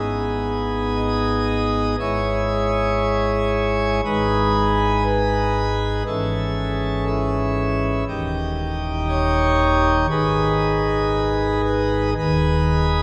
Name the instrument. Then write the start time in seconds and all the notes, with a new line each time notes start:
pipe organ
Already playing: G#1 G#2 B3 D#4 G#4
0.96 D#5
1.99 G#1 G#2 G#3 E4 G#4 C#5
4.05 G#1 G#2 G#3 D#4 G#4 B4
5.06 B4
6.07 G#1 G#2 E3 C#4 A4
7.07 E4
8.08 D#1 D#2 D#3 D#4 G4
9.09 C#5
10.10 G#1 G#2 D#3 D#4 G#4 B4
11.66 B4
12.18 D#1 D#2 D#3 D#4 G#4 B4